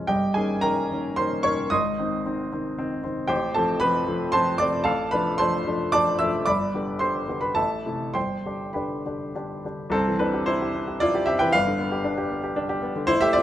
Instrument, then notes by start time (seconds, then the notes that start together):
grand piano
Already playing: G#1 G#2 F3 G#3 C#4 C#5 G#5 C#6
0.07 G1 G2 G4 D#5 G5
0.34 D#3 A#3 C#4 G#4 G#5
0.61 D#3 A#3 C#4 A#4 G5 A#5
0.91 D#3 A#3 C#4
1.16 D#3 A#3 C#4 C5 C6
1.43 D#3 A#3 C#4 C#5 C#6
1.70 G#1 D#5 C6 D#6
1.99 D#3 C4
2.25 D#3 C4
2.53 D#3 C4
2.79 D#3 C4
3.04 D#3 C4
3.27 A1 G4 C5 G5
3.54 F3 A3 C4 A4 A5
3.80 F3 A3 C4 B4 B5
4.07 F3 A3 C4
4.32 F3 A3 C4 C5 A5 C6
4.58 F3 A3 C4 D5 D6
4.84 A1 A4 F5 A5
5.11 F3 A3 D4 B4 B5
5.38 F3 A3 D4 C5 A5 C6
5.67 F3 A3 D4
5.92 F3 A3 D4 D5 A5 D6
6.19 F3 A3 D4 E5 E6
6.46 G1 D5 B5 D6
6.74 D3 B3 G4
6.99 D3 B3 G4 C5 C6
7.29 D3 B3 G4
7.41 B4 B5
7.55 A1 A4 E5 A5
7.86 C3 A3 E4
8.14 G1 C5 G5 C6
8.46 D3 D4 G4
8.73 D3 D4 G4 B4 G5 B5
9.06 D3 D4 G4
9.35 D3 D4 G4
9.65 D3 D4 G4
9.90 C2 C4 A4
10.08 E3
10.19 C4 D4 B4
10.34 G4
10.46 E4 C5
10.62 G4
10.75 C4
10.88 G4
11.00 E4 F4 D5
11.15 G4
11.26 C4 G4 E5
11.39 E3 B4 G5
11.52 G1 B4 F5
11.67 D3
11.79 B3
11.92 G4
12.04 D4
12.18 G4
12.30 B3
12.44 G4
12.56 D4
12.69 G4
12.82 B3
12.96 D3
13.07 A1 E4 C5
13.21 A3 G4 E5
13.33 C4 F4 D5